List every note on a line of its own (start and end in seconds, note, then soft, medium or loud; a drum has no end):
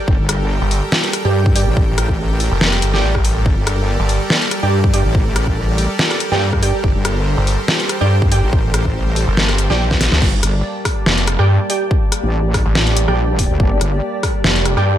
0.00 10.18 G3 medium
0.00 10.18 G4 medium
0.00 10.18 A4 medium
0.00 10.18 A#4 medium
0.08 0.17 G1 loud
0.08 3.45 G5 medium
0.08 kick loud
0.19 0.60 G1 medium
0.29 cross-stick medium
0.29 closed hi-hat medium
0.61 0.81 G1 loud
0.71 open hi-hat medium
0.92 snare loud
1.04 closed hi-hat soft
1.13 cross-stick soft
1.13 closed hi-hat medium
1.25 1.65 G2 loud
1.25 1.37 G4 medium
1.25 1.36 D5 medium
1.25 1.36 G5 loud
1.46 kick loud
1.56 1.69 G4 medium
1.56 1.69 D5 medium
1.56 1.69 G5 medium
1.56 open hi-hat loud
1.67 2.50 A1 loud
1.77 kick loud
1.98 cross-stick medium
1.98 closed hi-hat medium
2.09 kick medium
2.40 open hi-hat medium
2.52 2.60 F1 medium
2.61 2.81 F1 loud
2.61 snare loud
2.73 cross-stick medium
2.73 closed hi-hat soft
2.82 3.02 G1 loud
2.82 closed hi-hat medium
2.94 3.14 G4 medium
2.94 3.14 D5 medium
2.94 3.14 G5 loud
2.94 snare soft
3.03 3.44 A1 loud
3.15 kick medium
3.15 cross-stick medium
3.25 open hi-hat medium
3.46 3.55 G1 loud
3.46 6.83 D5 medium
3.46 kick loud
3.57 3.98 G1 medium
3.67 cross-stick medium
3.67 closed hi-hat medium
3.99 4.19 G1 medium
4.09 open hi-hat medium
4.30 snare loud
4.42 closed hi-hat soft
4.51 cross-stick medium
4.51 closed hi-hat medium
4.63 5.03 G2 loud
4.63 4.75 G4 loud
4.63 4.75 D5 medium
4.63 4.75 G5 loud
4.84 kick loud
4.94 5.07 G4 medium
4.94 5.07 D5 medium
4.94 5.07 G5 medium
4.94 open hi-hat medium
5.05 5.88 A1 loud
5.15 kick loud
5.36 cross-stick medium
5.36 closed hi-hat medium
5.47 kick medium
5.78 open hi-hat medium
5.99 snare loud
6.11 cross-stick medium
6.11 closed hi-hat soft
6.20 closed hi-hat medium
6.32 6.72 G2 loud
6.32 6.44 G4 medium
6.32 6.44 D5 medium
6.32 6.44 G5 loud
6.32 snare soft
6.53 kick medium
6.53 cross-stick medium
6.63 6.76 G4 medium
6.63 6.76 D5 medium
6.63 6.76 G5 medium
6.63 open hi-hat loud
6.84 6.93 G1 loud
6.84 10.21 C5 medium
6.84 kick loud
6.95 7.36 G1 loud
7.05 cross-stick medium
7.05 closed hi-hat medium
7.37 7.57 G1 loud
7.47 open hi-hat medium
7.68 snare loud
7.80 closed hi-hat soft
7.89 cross-stick medium
7.89 closed hi-hat medium
8.01 8.41 G2 loud
8.01 8.13 G4 loud
8.01 8.13 D5 medium
8.01 8.13 G5 loud
8.22 kick loud
8.32 8.45 G4 medium
8.32 8.45 D5 medium
8.32 8.45 G5 medium
8.32 open hi-hat loud
8.43 9.26 A1 loud
8.53 kick loud
8.74 cross-stick medium
8.74 closed hi-hat medium
8.85 kick medium
9.16 open hi-hat medium
9.28 9.68 G1 medium
9.37 snare loud
9.49 cross-stick medium
9.49 closed hi-hat soft
9.58 closed hi-hat medium
9.70 10.10 A#1 loud
9.70 9.82 G4 loud
9.70 9.82 D5 medium
9.70 9.82 G5 loud
9.70 snare soft
9.91 kick medium
9.91 snare medium
10.01 snare medium
10.01 open hi-hat loud
10.12 10.20 D2 loud
10.12 snare medium
10.22 10.41 G1 loud
10.22 14.98 G3 medium
10.22 14.98 A#3 medium
10.22 14.98 G4 medium
10.22 14.98 D5 medium
10.22 14.98 A5 medium
10.22 kick loud
10.22 crash loud
10.33 14.98 D5 medium
10.43 10.63 G1 loud
10.43 cross-stick medium
10.43 closed hi-hat medium
10.85 kick medium
10.85 cross-stick medium
10.85 open hi-hat medium
11.06 11.37 F1 loud
11.06 snare loud
11.18 closed hi-hat soft
11.27 cross-stick medium
11.27 closed hi-hat medium
11.39 11.58 G2 loud
11.39 11.51 G4 loud
11.39 11.51 D5 medium
11.39 11.51 G5 loud
11.39 cross-stick medium
11.70 11.83 G4 medium
11.70 11.83 D5 medium
11.70 11.83 G5 medium
11.70 open hi-hat loud
11.91 kick loud
12.12 cross-stick medium
12.12 closed hi-hat medium
12.23 12.64 A1 loud
12.54 kick medium
12.54 cross-stick medium
12.54 open hi-hat medium
12.66 13.06 A1 medium
12.75 snare loud
12.87 closed hi-hat soft
12.97 closed hi-hat medium
13.08 13.48 A#1 loud
13.08 13.20 G4 loud
13.08 13.20 D5 medium
13.08 13.20 G5 loud
13.08 cross-stick medium
13.39 kick medium
13.39 open hi-hat loud
13.50 13.58 D2 loud
13.60 13.79 G1 loud
13.60 kick loud
13.81 14.01 G1 loud
13.81 cross-stick medium
13.81 closed hi-hat medium
14.08 14.98 C6 medium
14.23 kick medium
14.23 cross-stick medium
14.23 open hi-hat medium
14.44 14.75 F1 loud
14.44 snare loud
14.56 closed hi-hat soft
14.65 cross-stick medium
14.65 closed hi-hat medium
14.77 14.96 G2 loud
14.77 14.89 G4 loud
14.77 14.89 D5 medium
14.77 14.89 G5 loud
14.77 cross-stick medium